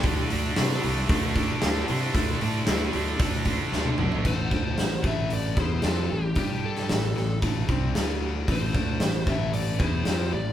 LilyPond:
<<
  \new Staff \with { instrumentName = "Lead electric guitar" } { \time 4/4 \key d \dorian \tempo 4 = 114 r1 | r1 | c''4. e''8 d''8 c''8 a'8 g'8 | g'8 a'4. r2 |
c''4. e''8 d''8 c''4 d''8 | }
  \new Staff \with { instrumentName = "Distorted electric guitar" } { \time 4/4 \key d \dorian <d a d'>8 <d a d'>8 <d a d'>8 <d a d'>8 <d a d'>8 <d a d'>8 <d a d'>8 <d a d'>8 | <d a d'>8 <d a d'>8 <d a d'>8 <d a d'>8 <d a d'>8 <d a d'>8 <d a d'>8 <d a d'>8 | <a, e a>8 <d a d'>8 <a, e>8 <a, e a>4 <e b e'>8 <f c' f'>8 <a, e>8 | <g d' g'>4 <a, e>8 <a, e>8 <a, e a>8 <c g c'>8 <d a d'>4 |
<a, e a>8 <d a d'>8 <a, e>8 <a, e a>4 <e b e'>8 <f c' f'>8 <a, e>8 | }
  \new Staff \with { instrumentName = "Distorted electric guitar" } { \time 4/4 \key d \dorian <d a d'>8 <d a d'>8 <d a d'>8 <d a d'>8 <d a d'>8 <d a d'>8 <d a d'>8 <d a d'>8 | <d a d'>8 <d a d'>8 <d a d'>8 <d a d'>8 <d a d'>8 <d a d'>8 <d a d'>8 <d a d'>8 | r1 | r1 |
r1 | }
  \new Staff \with { instrumentName = "Fingered electric bass" } { \clef bass \time 4/4 \key d \dorian d,8 d,8 c8 c,8 d,4 d,8 c8 | d,8 a,8 d,8 d,8 d,4 d,8 b,,8 | a,,8 d,8 a,,8 a,,4 e,8 f,8 a,,8 | g,4 a,,8 a,,8 a,,8 c,8 d,4 |
a,,8 d,8 a,,8 a,,4 e,8 f,8 a,,8 | }
  \new DrumStaff \with { instrumentName = "Drums" } \drummode { \time 4/4 <hho bd>8 hho8 <hho sn>16 sn16 hho8 <hho bd>8 <hho bd>8 <hho sn>16 sn16 hho8 | <hho bd>8 hho8 <hho sn>8 hho8 <hho bd>8 <hho bd>8 sn16 tommh16 toml16 tomfh16 | <cymc bd>8 bd8 <hho sn>8 bd8 hho8 bd8 <hho sn>4 | <hho bd>8. sn16 <hho sn>8 sn8 <hho bd>8 bd8 <hho sn>4 |
<hho bd>8 bd8 <hho sn>8 bd8 hho8 bd8 <hho sn>4 | }
>>